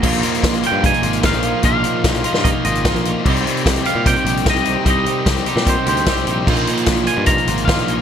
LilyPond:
<<
  \new Staff \with { instrumentName = "Clean electric guitar" } { \time 4/4 \key bes \mixolydian \tempo 4 = 149 r4. g''8 aes''4 f''4 | f''2 ees''8 ees''4 r8 | r4. f''8 g''4 ees''4 | ees''2 c''8 c''4 r8 |
r4. aes''8 bes''4 f''4 | }
  \new Staff \with { instrumentName = "String machine" } { \time 4/4 \key bes \mixolydian << { <aes' bes' f''>1~ | <aes' bes' f''>1 | <c'' g''>1~ | <c'' g''>1 |
<f'' aes''>1 | } \\ { ees'1~ | ees'1~ | ees'1~ | ees'1~ |
ees'1 | } >> }
  \new Staff \with { instrumentName = "Clean electric guitar" } { \time 4/4 \key bes \mixolydian <bes, f bes ees' f'>8 <bes ees' f'>4 <bes ees' f'>8 <bes, f bes ees' f'>8 <bes ees' f'>8 <f bes ees' f'>8 <bes ees' f'>8 | <bes, f bes ees' f'>8 <bes ees' f'>4 <bes ees' f'>8 <bes, f bes ees' f'>8 <bes ees' f'>8 <f bes ees' f'>8 <bes ees' f'>8 | <c g c' ees' g'>8 <c' ees' g'>4 <c' ees' g'>8 <c g c' ees' g'>8 <c' ees' g'>8 <g c' ees' g'>8 <c' ees' g'>8 | <c g c' ees' g'>8 <c' ees' g'>4 <c' ees' g'>8 <c g c' ees' g'>8 <c' ees' g'>8 <g c' ees' g'>8 <c' ees' g'>8 |
<bes, f bes ees' f'>8 <bes ees' f'>4 <bes ees' f'>8 <bes, f bes ees' f'>8 <bes ees' f'>8 <f bes ees' f'>8 <bes ees' f'>8 | }
  \new Staff \with { instrumentName = "Overdriven electric guitar" } { \time 4/4 \key bes \mixolydian <bes, f bes ees' f'>4 <f bes ees' f'>8 <bes ees' f'>4 <bes ees' f'>8 <bes, f bes ees' f'>4 | <bes, f bes ees' f'>4 <f bes ees' f'>8 <bes ees' f'>4 <bes ees' f'>8 <bes, f bes ees' f'>4 | <c g c' ees' g'>4 <g c' ees' g'>8 <c' ees' g'>4 <c' ees' g'>8 <c g c' ees' g'>4 | <c g c' ees' g'>4 <g c' ees' g'>8 <c' ees' g'>4 <c' ees' g'>8 <c g c' ees' g'>4 |
<bes, f bes ees' f'>4 <f bes ees' f'>8 <bes ees' f'>4 <bes ees' f'>8 <bes, f bes ees' f'>4 | }
  \new Staff \with { instrumentName = "Picked electric bass" } { \clef bass \time 4/4 \key bes \mixolydian bes,,8 r8 bes,,8 r16 g,8 r16 aes,,8. bes,,8 r16 | bes,,8 r8 bes,,8 r16 g,8 r16 aes,,8. bes,,8 r16 | c,8 r8 c,8 r16 bes,8 r16 bes,,8. c,8 r16 | c,8 r8 c,8 r16 bes,8 r16 d,8 c,8 bes,,8 |
bes,,8 r8 bes,,8 r16 g,8 r16 aes,,8. bes,,8 r16 | }
  \new DrumStaff \with { instrumentName = "Drums" } \drummode { \time 4/4 <cymc bd>16 hh16 hh16 hh16 <hh bd sn>16 hh16 hh8 <hh bd>16 hh16 hh16 hh16 <hh bd sn>16 hh16 hh8 | <hh bd>8 hh8 <hh bd sn>16 hh16 hh16 sn16 <hh bd>8 hh16 hh16 <hh bd sn>16 hh16 hh8 | <cymc bd>16 hh16 hh16 hh16 <hh bd sn>16 hh16 hh8 <hh bd>16 hh16 hh16 hh16 <hh bd sn>16 hh16 hh8 | <hh bd>8 hh8 <hh bd sn>16 hh16 hh16 sn16 <hh bd>8 hh16 hh16 <hh bd sn>16 hh16 hh8 |
<cymc bd>16 hh16 hh16 hh16 <hh bd sn>16 hh16 hh8 <hh bd>16 hh16 hh16 hh16 <hh bd sn>16 hh16 hh8 | }
>>